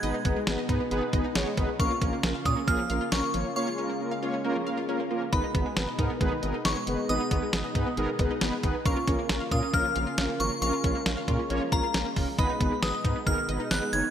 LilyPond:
<<
  \new Staff \with { instrumentName = "Synth bell" } { \time 4/4 \key gis \dorian \tempo 4 = 136 gis'''8 r2. r8 | cis'''4. dis'''8 eis'''4 cis'''4 | cis'''2. r4 | b''2. cis'''4 |
dis'''2.~ dis'''8 r8 | cis'''4. dis'''8 eis'''4 r8 cis'''8 | cis'''2 r8 ais''4 r8 | b''4 dis'''4 eis'''4 fis'''8 gis'''8 | }
  \new Staff \with { instrumentName = "Analog polysynth" } { \time 4/4 \key gis \dorian <b dis' gis' b'>16 r16 <b dis' gis' b'>16 r16 <b dis' gis' b'>16 r16 <b dis' gis' b'>16 r16 <b dis' gis' b'>16 r16 <b dis' gis' b'>16 r16 <b dis' gis' cis''>16 r16 <b dis' gis' b'>16 r16 | <ais cis' eis' ais'>16 r16 <ais cis' eis' ais'>16 r16 <ais cis' eis' ais'>16 r16 <ais cis' eis' ais'>16 r16 <ais cis' eis' gis'>16 r16 <ais cis' eis' ais'>16 r16 <ais cis' eis' ais'>16 r16 <ais cis' eis' cis''>16 r16 | <ais cis' eis' cis''>16 r16 <ais cis' eis' ais'>16 r16 <ais cis' eis' ais'>16 r16 <ais cis' eis' cis''>16 r16 <ais cis' eis' ais'>16 r16 <ais cis' eis' ais'>16 r16 <ais cis' eis' ais'>16 r16 <ais cis' eis' ais'>16 r16 | <b dis' gis' b'>16 r16 <b dis' gis' b'>16 r16 <b dis' gis' b'>16 r16 <b dis' gis' ais'>16 r16 <b dis' gis' b'>16 r16 <b dis' gis' ais'>16 r16 <b dis' gis' cis''>16 r16 <b dis' gis' b'>16 r16 |
<b dis' gis' b'>16 r16 <b dis' gis' b'>16 r16 <b dis' gis' b'>16 r16 <b dis' gis' b'>16 r16 <b dis' gis' ais'>16 r16 <b dis' gis' b'>16 r16 <b dis' gis' b'>16 r16 <b dis' gis' b'>16 r16 | <ais cis' eis' ais'>16 r16 <ais cis' eis' ais'>16 r16 <ais cis' eis' ais'>16 r16 <ais cis' eis' ais'>16 r16 <ais cis' eis' ais'>16 r16 <ais cis' eis' ais'>16 r16 <ais cis' eis' ais'>16 r16 <ais cis' eis' ais'>16 r16 | <ais cis' eis' ais'>16 r16 <ais cis' eis' ais'>16 r16 <ais cis' eis' ais'>16 r16 <ais cis' eis' ais'>16 r16 <ais cis' eis' cis''>16 r16 <ais cis' eis' ais'>16 r16 <ais cis' eis' ais'>16 r16 <ais cis' eis' ais'>16 r16 | <b dis' gis' b'>16 r16 <b dis' gis' b'>16 r16 <b dis' gis' b'>16 r16 <b dis' gis' b'>16 r16 <b dis' gis' ais'>16 r16 <b dis' gis' b'>16 r16 <b dis' gis' b'>16 r16 <b dis' gis' cis''>16 r16 | }
  \new Staff \with { instrumentName = "Synth arpeggio sound" } { \time 4/4 \key gis \dorian dis''16 dis'16 b16 gis16 r16 dis''16 dis'16 b16 gis16 dis16 dis''16 dis'16 b16 gis16 dis16 r16 | eis''16 eis'16 cis'16 ais16 r16 eis''16 eis'16 cis'16 ais16 eis16 eis''16 eis'16 cis'16 ais16 eis16 r16 | eis''16 eis'16 cis'16 ais16 r16 eis''16 eis'16 cis'16 ais16 eis16 eis''16 eis'16 cis'16 ais16 eis16 r16 | dis''16 dis'16 b16 gis16 r16 dis''16 dis'16 b16 gis16 dis16 dis''16 dis'16 b16 gis16 dis16 r16 |
dis''16 dis'16 b16 gis16 r16 dis''16 dis'16 b16 gis16 dis16 dis''16 dis'16 b16 gis16 dis16 r16 | eis''16 eis'16 cis'16 ais16 r16 eis''16 eis'16 cis'16 ais16 eis16 eis''16 eis'16 cis'16 ais16 eis16 r16 | eis''16 eis'16 cis'16 ais16 r16 eis''16 eis'16 cis'16 ais16 eis16 eis''16 eis'16 cis'16 ais16 eis16 r16 | dis''16 dis'16 b16 gis16 r16 dis''16 dis'16 b16 gis16 dis16 dis''16 dis'16 b16 gis16 dis16 r16 | }
  \new Staff \with { instrumentName = "Analog synth pad" } { \clef bass \time 4/4 \key gis \dorian << { <b, dis'>1 | <cis eis'>1~ | <cis eis'>1 | <b, dis'>1~ |
<b, dis'>1 | <cis eis'>1~ | <cis eis'>1 | <b, dis'>1 | } \\ { gis1 | ais1 | gis1 | gis1~ |
gis1 | ais1 | gis1~ | gis1 | } >> }
  \new Staff \with { instrumentName = "Analog synth bass" } { \clef bass \time 4/4 \key gis \dorian gis,,16 r16 gis,,16 r16 gis,,16 r16 gis,16 r16 gis,,16 r16 gis,,16 r16 gis,,16 r16 gis,,16 r16 | ais,,16 r16 ais,,16 r16 ais,,16 r16 ais,16 r16 ais,,16 r16 ais,,16 r16 ais,,16 r16 gis,,16 r16 | r1 | gis,,16 r16 gis,,16 r16 gis,,16 r16 gis,16 r16 gis,,16 r16 gis,,16 r16 gis,,16 r16 fis,,16 r16 |
gis,,16 r16 gis,,16 r16 gis,,16 r16 gis,16 r16 gis,,16 r16 gis,,16 r16 gis,,16 r16 gis,,16 r16 | ais,,16 r16 ais,,16 r16 ais,,16 r16 ais,16 r16 ais,,16 r16 ais,,16 r16 ais,,16 r16 gis,,16 r16 | ais,,16 r16 ais,,16 r16 ais,,16 r16 ais,16 r16 ais,,16 r16 ais,,16 r16 ais,,16 r16 fis,,16 r16 | gis,,16 r16 gis,,16 r16 gis,,16 r16 gis,16 r16 gis,,16 r16 gis,,16 r16 gis,,16 r16 fis,,16 r16 | }
  \new DrumStaff \with { instrumentName = "Drums" } \drummode { \time 4/4 hh8 <hh bd>8 <hh sn>8 <hh bd>8 hh8 <hh bd>8 <hh sn>8 <hh bd>8 | <hh bd>8 <hh bd>8 <hh sn>8 <hh bd>8 <hh bd>8 hh8 <hh sn>8 hh8 | r4 r4 r4 r4 | <hh bd>8 <hh bd>8 <hh sn>8 <hh bd>8 <hh bd>8 hh8 <hh sn>8 hh8 |
hh8 <hh bd>8 <hh sn>8 <hh bd>8 hh8 <hh bd>8 <hh sn>8 <hh bd>8 | <hh bd>8 <hh bd>8 <hh sn>8 <hh bd>8 <hh bd>8 hh8 <hh sn>8 hh8 | hh8 <hh bd>8 <hh sn>8 <hh bd>8 hh8 <hh bd>8 <hh sn>8 <hho bd>8 | <hh bd>8 <hh bd>8 <hh sn>8 <hh bd>8 <hh bd>8 hh8 <hh sn>8 hh8 | }
>>